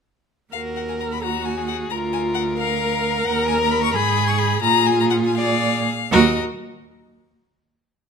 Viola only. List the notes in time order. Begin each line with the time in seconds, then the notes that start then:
0.54 A#4
1.23 F#4
1.93 F4
2.58 A#4
3.95 G#4
4.64 F4
5.38 D5
6.13 F#4